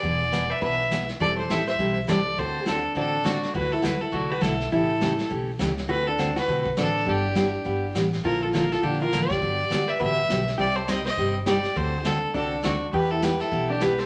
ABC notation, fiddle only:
X:1
M:4/4
L:1/16
Q:"Swing" 1/4=205
K:Dmix
V:1 name="Fiddle"
d6 e2 e6 z2 | d2 c2 e2 e4 z2 d4 | c4 A4 A4 F3 z | B2 A2 B2 A2 F2 B2 A4 |
A8 z8 | B2 A4 B4 z2 A4 | G12 z4 | _B2 A2 B2 A2 G2 B4 d2- |
d6 e2 e6 z2 | d2 c2 _e2 e4 z2 d4 | c4 A4 A4 F3 z | B2 A2 B2 A4 G2 B2 c2 |]